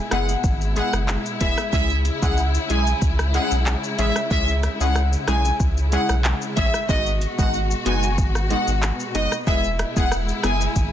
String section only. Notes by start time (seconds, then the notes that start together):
Already playing: B2 G#3 E4
1.73 C#3
6.89 B2 F#4
9.47 G#3 E4